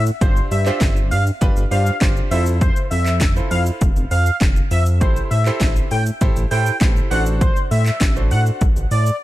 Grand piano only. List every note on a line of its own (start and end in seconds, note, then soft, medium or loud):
0.21 0.51 D4 medium
0.21 0.51 F4 medium
0.21 0.51 G4 medium
0.21 0.51 C5 loud
0.66 1.15 D4 medium
0.66 1.15 F4 medium
0.66 1.15 G4 medium
0.66 1.16 C5 loud
1.41 1.61 D4 loud
1.41 1.61 F4 medium
1.41 1.61 G4 medium
1.41 1.61 B4 loud
1.71 1.91 D4 medium
1.71 1.91 F4 medium
1.71 1.91 G4 medium
1.71 1.91 C5 medium
2.01 2.31 D4 medium
2.01 2.30 F4 medium
2.01 2.31 G4 medium
2.01 2.30 C5 loud
2.31 3.15 E4 medium
2.31 3.15 F4 medium
2.31 3.15 A4 medium
2.31 3.16 C5 loud
3.36 4.15 E4 medium
3.36 4.15 F4 medium
3.36 4.15 A4 medium
3.36 4.15 C5 medium
5.01 5.31 E4 medium
5.01 5.31 G4 medium
5.01 5.31 A4 medium
5.01 5.31 C5 medium
5.46 5.95 E4 medium
5.46 5.95 G4 medium
5.46 5.95 A4 medium
5.46 5.95 C5 loud
6.21 6.41 E4 loud
6.21 6.41 G4 loud
6.21 6.41 A4 medium
6.21 6.41 C5 loud
6.51 6.71 E4 medium
6.51 6.71 G4 medium
6.51 6.71 A4 medium
6.51 6.71 C5 medium
6.81 7.11 E4 medium
6.81 7.11 G4 medium
6.81 7.10 A4 medium
6.81 7.10 C5 loud
7.11 7.95 D4 medium
7.11 7.95 F#4 medium
7.11 7.95 A4 medium
7.11 7.95 C5 medium
8.16 8.95 D4 medium
8.16 8.95 F#4 medium
8.16 8.95 A4 medium
8.16 8.95 C5 medium